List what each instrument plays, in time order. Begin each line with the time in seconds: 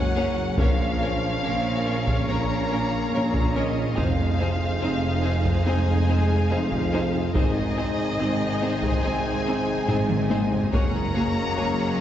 Already playing: tuba F#1, double bass section F#1, cello section F#2, trombone section C#3 A#3, french horn section F#3, string section C#4 A#4 C#5 G#5, violin section F#5
0.16 viola section A#3 C#4, violin section G#4 C#5
0.57 double bass section A#1, tuba A#1, cello section A#2, trombone section C#3 A#3, french horn section F3, viola section A#3 C#4, string section C#4 A#4 C#5 F5, violin section A#4 C#5 F5, taiko
1.01 viola section A#3 C#4, violin section A#4 C#5
1.43 tuba A#1, double bass section A#1, cello section A#2, viola section A#3 C#4, violin section A#4 C#5
1.85 viola section A#3 C#4, violin section A#4 C#5
2.07 taiko
2.27 tuba A#1, double bass section A#1, cello section A#2, french horn section A#3, viola section A#3 C#4, violin section A#4 C#5 A#5
2.71 viola section A#3 C#4, violin section A#4 C#5
3.12 tuba A#1, double bass section A#1, cello section A#2, viola section A#3 C#4, violin section A#4 C#5
3.33 taiko
3.55 french horn section D#3, viola section A#3 C#4, violin section A#4 C#5 D#5
3.96 double bass section F1, tuba F1, timpani F2, cello section F2, trombone section C3 G#3, french horn section F3, viola section C4 D#4, string section D#4 G#4 C5 F5, violin section G#4 C5 F5, taiko
4.40 viola section C4 D#4, violin section G#4 C5
4.81 double bass section F1, tuba F1, cello section F2, viola section C4 D#4, violin section G#4 C5
5.23 viola section C4 D#4, violin section G#4 C5
5.45 taiko
5.65 double bass section F1, tuba F1, cello section F2, french horn section G#3, viola section C4 D#4, violin section G#4 C5 G#5
6.08 viola section C4 D#4, violin section G#4 C5
6.49 tuba F1, double bass section F1, cello section F2, french horn section F3, viola section C4 D#4, violin section G#4 C5 F5
6.72 taiko
6.93 viola section C4 D#4, violin section G#4 C5
7.33 tuba G#1, double bass section G#1, cello section G#2, trombone section C3 G#3, french horn section D#3, viola section C4 D#4, string section D#4 G#4 C5 G#5, violin section G#4 C5 D#5, taiko
7.77 viola section C4 D#4, violin section G#4 C5
8.19 double bass section G#1, tuba G#1, cello section G#2, viola section C4 D#4, violin section G#4 C5
8.61 viola section C4 D#4, violin section G#4 C5
8.83 taiko
9.03 tuba G#1, double bass section G#1, cello section G#2, french horn section G#3, viola section C4 D#4, violin section G#4 C5 G#5
9.46 viola section C4 D#4, violin section G#4 C5
9.87 double bass section G#1, tuba G#1, cello section G#2, viola section C4 D#4, violin section G#4 C5, taiko low-mid
10.09 taiko mid
10.30 viola section C4 D#4, violin section G#4 C5, taiko high
10.51 taiko low
10.72 double bass section F#1, tuba F#1, cello section F#2, trombone section C#3 G#3, viola section A#3 F#4, french horn section A#3, string section C#4 G#4 C#5 F#5, violin section G#4 C#5 A#5, taiko
11.15 viola section A#3 F#4, violin section G#4 C#5
11.56 double bass section F#1, tuba F#1, cello section F#2, viola section A#3 F#4, violin section G#4 C#5